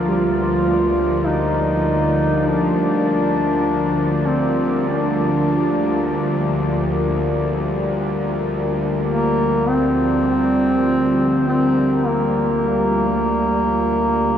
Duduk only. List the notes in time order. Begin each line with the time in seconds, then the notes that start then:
0.05 F4
1.26 D#4
2.46 D4
4.27 C4
4.88 D4
9.07 A#3
9.67 C4
11.47 C4
12.05 A#3